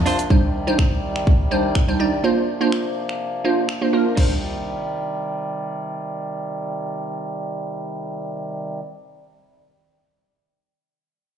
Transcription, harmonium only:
0.00 0.26 C3 medium
0.00 0.26 F3 medium
0.00 0.28 A#3 medium
0.00 0.28 D4 medium
0.30 4.14 C3 medium
0.30 2.22 D#3 medium
0.30 2.22 G3 medium
0.30 4.14 D5 medium
2.24 4.15 F3 medium
2.24 4.15 A#3 medium
4.17 8.81 C3 medium
4.17 8.81 D#3 medium
4.17 8.80 G3 medium
4.17 8.80 D5 medium

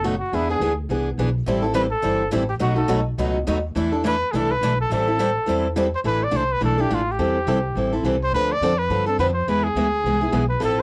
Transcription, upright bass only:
0.00 0.20 F#1 medium
0.32 0.55 E2 medium
0.60 0.85 D2 medium
0.89 1.13 C2 medium
1.18 1.42 B1 medium
1.46 1.92 A1 medium
2.03 2.27 G1 medium
2.32 2.57 A1 medium
2.60 2.84 B1 medium
2.89 3.13 B1 medium
3.18 3.42 C#2 medium
3.47 3.71 D#2 medium
3.75 4.21 E2 medium
4.33 4.57 C2 medium
4.61 4.85 B1 medium
4.90 5.36 A1 medium
5.47 5.93 E2 medium
6.04 6.31 A1 medium
6.32 6.60 C2 medium
6.61 6.89 B1 medium
6.90 7.18 A1 medium
7.19 7.46 E2 medium
7.47 7.75 C2 medium
7.75 8.03 A1 medium
8.03 8.31 C2 medium
8.31 8.60 D2 medium
8.60 8.89 F2 medium
8.89 9.18 G2 medium
9.18 9.46 F2 medium
9.47 9.74 E2 medium
9.75 10.03 D2 medium
10.04 10.32 C2 medium
10.32 10.60 B1 medium
10.61 10.82 A1 medium

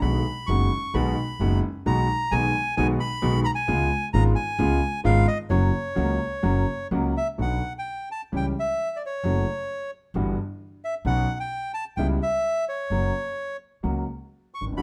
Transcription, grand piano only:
0.02 0.22 B1 medium
0.02 0.21 B2 medium
0.02 0.21 D#3 medium
0.02 0.22 G#3 medium
0.02 0.21 B3 medium
0.02 0.22 F#4 medium
0.49 0.68 F#1 medium
0.49 0.68 F#2 medium
0.49 0.68 D#3 medium
0.49 0.68 G#3 medium
0.49 0.68 B3 medium
0.49 0.68 F#4 medium
0.94 1.14 B1 medium
0.94 1.14 B2 medium
0.94 1.14 D#3 medium
0.94 1.14 G#3 medium
0.94 1.14 B3 medium
0.94 1.14 F#4 medium
1.40 1.60 F#1 medium
1.40 1.60 F#2 medium
1.40 1.60 D#3 medium
1.40 1.60 G#3 medium
1.40 1.60 B3 medium
1.40 1.60 F#4 medium
1.86 2.06 B1 medium
1.86 2.06 B2 medium
1.86 2.05 D#3 medium
1.86 2.06 G#3 medium
1.86 2.06 B3 medium
1.86 2.06 F#4 medium
2.32 2.52 B1 medium
2.32 2.52 B2 medium
2.32 2.52 D#3 medium
2.32 2.51 G#3 medium
2.32 2.52 B3 medium
2.32 2.52 F#4 medium
2.77 2.97 B1 medium
2.77 2.97 B2 medium
2.77 2.97 D#3 medium
2.77 2.97 G#3 medium
2.77 2.97 B3 medium
2.77 2.98 F#4 medium
3.22 3.42 B1 medium
3.22 3.42 B2 medium
3.22 3.42 D#3 medium
3.22 3.42 G#3 medium
3.22 3.42 B3 medium
3.22 3.42 F#4 medium
3.68 3.87 C#2 medium
3.68 3.88 C#3 medium
3.68 3.88 G#3 medium
3.68 3.88 B3 medium
3.68 3.88 F4 medium
4.14 4.33 G#1 medium
4.14 4.33 G#2 medium
4.14 4.33 C#3 medium
4.14 4.33 G#3 medium
4.14 4.33 B3 medium
4.14 4.33 F4 medium
4.59 4.78 C#2 medium
4.59 4.79 C#3 medium
4.59 4.78 G#3 medium
4.59 4.79 B3 medium
4.59 4.79 F4 medium
5.04 5.24 G#1 medium
5.04 5.24 G#2 medium
5.04 5.24 C#3 medium
5.04 5.24 G#3 medium
5.04 5.24 B3 medium
5.04 5.24 F4 medium
5.50 5.70 F#2 medium
5.50 5.70 C#3 medium
5.50 5.70 F#3 medium
5.50 5.70 A#3 medium
5.50 5.70 F#4 medium
5.95 6.16 C#2 medium
5.95 6.16 C#3 medium
5.95 6.16 F#3 medium
5.95 6.16 A#3 medium
5.95 6.16 F#4 medium
6.43 6.64 F#2 medium
6.43 6.63 C#3 medium
6.43 6.63 F#3 medium
6.43 6.63 A#3 medium
6.43 6.64 F#4 medium
6.91 7.12 C#2 medium
6.91 7.12 C#3 medium
6.91 7.12 F#3 medium
6.91 7.12 A#3 medium
6.91 7.12 F#4 medium
7.38 7.58 B1 medium
7.38 7.58 B2 medium
7.38 7.58 D3 medium
7.38 7.58 F#3 soft
7.38 7.58 B3 medium
7.38 7.58 F#4 medium
8.32 8.52 C#2 medium
8.32 8.52 C#3 medium
8.32 8.52 E3 medium
8.32 8.52 G3 medium
8.32 8.52 C#4 soft
8.32 8.52 G4 medium
9.24 9.44 F#2 medium
9.24 9.44 C#3 medium
9.24 9.44 F#3 medium
9.24 9.43 A3 medium
9.24 9.44 F#4 medium
10.15 10.34 G1 medium
10.15 10.35 G2 medium
10.15 10.34 E3 medium
10.15 10.34 G3 medium
10.15 10.34 B3 medium
10.15 10.35 F#4 medium
11.06 11.25 B1 medium
11.06 11.25 B2 medium
11.06 11.25 C#3 medium
11.06 11.25 F#3 medium
11.06 11.25 B3 medium
11.06 11.25 F#4 medium
11.98 12.18 C#2 medium
11.98 12.18 C#3 medium
11.98 12.18 G3 medium
11.98 12.18 B3 medium
11.98 12.18 E4 medium
12.91 13.11 F#2 medium
12.91 13.11 C#3 medium
12.91 13.10 F#3 medium
12.91 13.11 A#3 medium
12.91 13.11 F#4 medium
13.83 14.03 C#2 medium
13.83 14.03 C#3 medium
13.83 14.03 F#3 medium
13.83 14.03 A#3 medium
13.83 14.03 F#4 medium
14.61 14.67 G#1 soft
14.67 14.72 A1 soft
14.73 14.78 A#1 soft
14.77 14.82 B1 medium
14.77 14.82 B2 medium
14.77 14.82 D3 medium
14.77 14.82 A3 medium
14.77 14.82 B3 medium
14.77 14.82 F#4 medium

